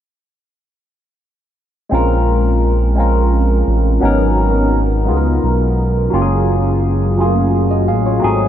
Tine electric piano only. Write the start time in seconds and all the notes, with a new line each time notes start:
1.89 G#3 C4 C#4 F4
1.94 A#4
2.95 G#3 C4 C#4 F4
3.00 A#4
4.00 F#3 B3 C#4 D#4
4.05 A#4
5.05 G#3 B3 D#4 F4
5.10 G#4
5.17 A#4
6.10 F#3 A#3 C#4 F4
6.15 G4
6.22 G#4
7.17 F#3 A3 C#4 F4
7.21 A#3 G#4
7.71 F#4 D#5
7.88 G#4 F5
8.06 F4 C#5
8.19 F#3 A3 C4 D#4
8.24 G#4